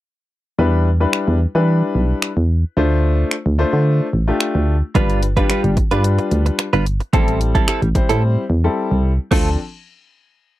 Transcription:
0.58 E2 G3 D4 E4 B4
1.00 G3 D4 E4 B4
1.13 finger snap
1.28 E2
1.55 E3 G3 D4 E4 B4
1.95 B1
2.22 finger snap
2.37 E2
2.77 D2 A3 D4 F4 C5
3.31 finger snap
3.46 D2
3.58 A3 D4 F4 C5
3.73 D3
4.13 A1
4.28 A3 D4 F4 G4
4.40 finger snap
4.55 D2
4.95 G1 G3 D4 F4 B4, kick, closed hi-hat
5.10 closed hi-hat
5.22 muted clean electric guitar stroke, closed hi-hat
5.37 G3 D4 F4 G4 B4, kick, closed hi-hat
5.49 G3 D4 F4 B4, finger snap, closed hi-hat
5.64 G1, muted clean electric guitar stroke, closed hi-hat
5.77 muted clean electric guitar stroke, kick, closed hi-hat
5.91 G2 G3 D4 F4 B4, closed hi-hat
6.04 muted clean electric guitar stroke, closed hi-hat
6.19 muted clean electric guitar stroke, closed hi-hat
6.31 D2, closed hi-hat
6.46 muted clean electric guitar stroke, closed hi-hat
6.59 finger snap, muted clean electric guitar stroke, closed hi-hat
6.73 G1 G3 D4 F4 B4, closed hi-hat
6.86 muted clean electric guitar stroke, closed hi-hat
7.00 muted clean electric guitar stroke, closed hi-hat
7.13 A1 G3 C4 E4 A4, kick, closed hi-hat
7.28 closed hi-hat
7.41 muted clean electric guitar stroke, closed hi-hat
7.55 G3 C4 E4 A4, kick, closed hi-hat
7.68 G3 C4 E4 A4, finger snap, closed hi-hat
7.82 A1, muted clean electric guitar stroke, closed hi-hat
7.95 G3 C4 E4 C5, muted clean electric guitar stroke, kick, closed hi-hat
8.09 A2 G3 C4 E4 A4, closed hi-hat
8.50 E2
8.64 G3 C4 E4 A4
8.91 C2
9.31 D2 F3 A3 C4 D4 F4 A4, kick, crash

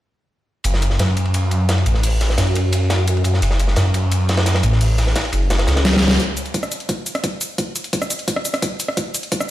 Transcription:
0.64 F#1, closed hi-hat, ride
0.74 snare
0.82 closed hi-hat, ride
0.90 snare
0.99 F#2, snare, closed hi-hat, ride
1.17 closed hi-hat, ride
1.25 ride
1.34 closed hi-hat, ride
1.51 closed hi-hat, ride
1.69 snare, closed hi-hat, ride
1.78 ride
1.86 A1, closed hi-hat, ride
1.94 snare
2.03 closed hi-hat, open hi-hat
2.21 snare, closed hi-hat, ride
2.29 snare
2.38 F#2, snare, closed hi-hat, ride
2.47 ride
2.55 closed hi-hat, ride
2.72 closed hi-hat, ride
2.90 snare, closed hi-hat, ride
3.07 closed hi-hat, ride
3.17 ride
3.24 F#2, closed hi-hat, ride
3.34 snare
3.42 F#1, closed hi-hat, ride
3.51 snare
3.60 closed hi-hat, ride
3.68 snare
3.76 F#2, snare, closed hi-hat, ride
3.94 closed hi-hat, ride
4.12 closed hi-hat, ride
4.29 snare, closed hi-hat, ride
4.37 snare, ride
4.46 snare, closed hi-hat, ride
4.55 snare, ride
4.63 A1, closed hi-hat, ride
4.73 snare
4.81 closed hi-hat, open hi-hat
4.98 snare, closed hi-hat, ride
5.07 snare
5.16 snare, closed hi-hat, ride
5.25 ride
5.32 F#1, closed hi-hat, ride
5.50 snare, closed hi-hat, ride
5.59 snare, ride
5.67 C#2, snare, closed hi-hat, ride
5.76 snare, ride
5.85 snare, closed hi-hat, ride
5.93 snare, ride
5.97 snare
6.02 snare, closed hi-hat, ride
6.08 snare
6.11 snare
6.20 kick, closed hi-hat
6.37 closed hi-hat, shaker
6.46 closed hi-hat
6.54 kick, closed hi-hat
6.63 cross-stick, shaker
6.72 closed hi-hat, shaker
6.80 closed hi-hat
6.89 kick, closed hi-hat
7.06 closed hi-hat, shaker
7.15 cross-stick, closed hi-hat
7.24 kick, closed hi-hat
7.41 closed hi-hat, shaker
7.58 kick, closed hi-hat
7.76 closed hi-hat, shaker
7.84 closed hi-hat
7.93 kick, closed hi-hat
8.02 cross-stick, shaker
8.10 closed hi-hat, shaker
8.19 closed hi-hat
8.28 kick, closed hi-hat
8.36 cross-stick
8.45 closed hi-hat, shaker
8.54 cross-stick, closed hi-hat
8.62 kick, closed hi-hat
8.80 closed hi-hat, shaker
8.88 cross-stick
8.97 kick, closed hi-hat
9.14 closed hi-hat, shaker
9.23 closed hi-hat
9.32 kick, closed hi-hat
9.40 cross-stick, shaker

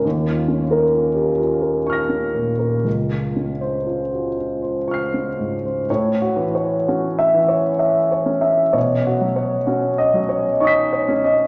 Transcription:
0.05 D#2
0.29 F4
0.48 C#4
0.71 A#4
0.93 F4
1.15 G4
1.39 F4
1.61 A#4
1.86 F4 C#6 F6
1.93 A#6
2.09 C#4
2.34 A#2
2.59 A#4
2.84 C#2
3.10 F4
3.36 C#4
3.61 C5
3.86 F4
4.12 F#4
4.38 F4
4.62 C5
4.88 F4 C#6 F6
4.94 C7
5.14 C#4
5.39 G#2
5.65 C5
5.90 A2 C#5
6.22 F#4
6.36 E3
6.55 C#5
6.88 C#4 F#4
7.19 E5
7.34 E3
7.48 C#5
7.79 E5
8.12 C#5
8.26 C#4
8.41 E5
8.73 B2 C#5
9.07 F#4
9.21 F#3
9.36 C#5
9.67 C#4 F#4
9.98 D#5
10.14 F#3
10.29 C#5
10.60 D#4 D#5 C#6
10.65 D#6 B6
10.93 C#5
11.08 C#4
11.24 D#5

